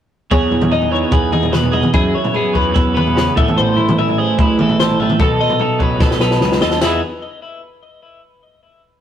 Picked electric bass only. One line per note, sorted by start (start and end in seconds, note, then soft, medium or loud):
0.32 0.48 E2 medium
0.51 1.03 E2 medium
1.12 1.81 E2 medium
1.94 2.11 F#2 loud
2.55 2.72 E2 medium
2.76 3.27 E2 medium
3.38 3.45 A1 medium
3.57 3.74 A1 medium
3.77 4.29 A1 medium
4.39 5.07 A1 medium
5.20 5.37 B1 loud
5.80 5.97 A1 medium
6.01 6.18 A1 medium
6.20 6.39 B1 medium
6.40 6.59 C#2 medium
6.61 6.79 D#2 medium
6.80 7.00 E2 medium